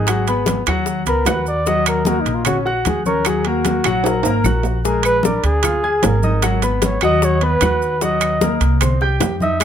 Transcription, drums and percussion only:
0.07 high bongo, high timbale, claves, maracas
0.27 high bongo, high conga, high timbale, maracas
0.46 high bongo, high conga, high timbale, maracas
0.66 high bongo, high conga, high timbale, claves, maracas
0.86 high bongo, high conga, maracas
1.06 high bongo, high conga, high timbale, maracas
1.25 high bongo, low bongo, high conga, high timbale, low timbale, claves, maracas
1.46 high conga, maracas
1.66 high bongo, high conga, maracas
1.85 high bongo, high conga, high timbale, claves, maracas
2.05 high bongo, high conga, maracas
2.26 high bongo, high conga, high timbale, maracas
2.45 high bongo, high conga, low conga, high timbale, claves, maracas
2.67 high bongo, high conga
2.85 high bongo, low bongo, high conga, high timbale, maracas
3.06 high conga, maracas
3.25 high bongo, high conga, high timbale, claves, maracas
3.45 high bongo, high conga, high timbale
3.65 high bongo, high conga, high timbale, maracas
3.84 high bongo, high conga, high timbale, claves, maracas
4.04 high bongo, high conga, high timbale, maracas
4.23 high bongo, high conga, high timbale, maracas
4.44 high bongo, low bongo, high conga, claves, maracas
4.63 high conga, low timbale, maracas
4.84 high bongo, high conga, maracas
5.03 high bongo, high conga, high timbale, claves, maracas
5.23 high bongo, high conga, maracas
5.44 high bongo, high conga, high timbale, maracas
5.63 high bongo, high conga, low conga, high timbale, claves, maracas
5.83 high bongo, high conga
6.03 high bongo, low bongo, high conga, high timbale, low timbale, maracas
6.23 high conga, maracas
6.42 high bongo, high conga, high timbale, claves, maracas
6.62 high bongo, high conga, high timbale, maracas
6.82 high bongo, high conga, high timbale, maracas
7.01 high bongo, high conga, high timbale, claves, maracas
7.22 high bongo, high conga, maracas
7.41 high bongo, high conga, high timbale
7.61 high bongo, low bongo, high conga, high timbale, claves, maracas
7.82 high conga, maracas
8.01 high bongo, high conga, maracas
8.21 high bongo, high conga, high timbale, claves, maracas
8.41 high bongo, high conga, maracas
8.61 high bongo, high conga, high timbale, maracas
8.81 high bongo, high conga, low conga, high timbale, claves, maracas
9.01 high bongo, high conga
9.20 high bongo, low bongo, high conga, high timbale, low timbale, maracas
9.40 high conga, maracas
9.60 high bongo, high timbale

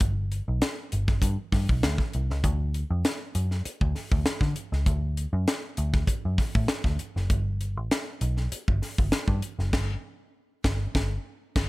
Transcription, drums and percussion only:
0.00 kick, closed hi-hat
0.32 closed hi-hat
0.62 snare, closed hi-hat
0.92 closed hi-hat
1.08 kick, snare
1.22 kick, closed hi-hat
1.52 kick, snare, open hi-hat
1.69 kick
1.83 snare, closed hi-hat
1.98 kick, snare
2.13 closed hi-hat
2.31 snare
2.44 kick, closed hi-hat
2.74 closed hi-hat
3.05 snare, closed hi-hat
3.35 closed hi-hat
3.51 snare
3.65 closed hi-hat
3.81 kick
3.95 snare, open hi-hat
4.12 kick
4.26 snare, closed hi-hat
4.41 kick, snare
4.56 closed hi-hat
4.73 snare
4.86 kick, closed hi-hat
5.17 closed hi-hat
5.48 snare, closed hi-hat
5.77 closed hi-hat
5.93 kick, snare
6.07 kick, closed hi-hat
6.38 kick, snare, open hi-hat
6.55 kick
6.68 snare, closed hi-hat
6.84 kick, snare
6.99 closed hi-hat
7.17 snare
7.30 kick, closed hi-hat
7.61 closed hi-hat
7.91 snare, closed hi-hat
8.21 closed hi-hat
8.37 snare
8.52 closed hi-hat
8.68 kick
8.82 snare, open hi-hat
8.98 kick
9.12 snare, closed hi-hat
9.28 kick
9.42 closed hi-hat
9.59 snare
9.73 kick, snare, crash
10.64 kick, snare
10.95 kick, snare
11.56 kick, snare, crash

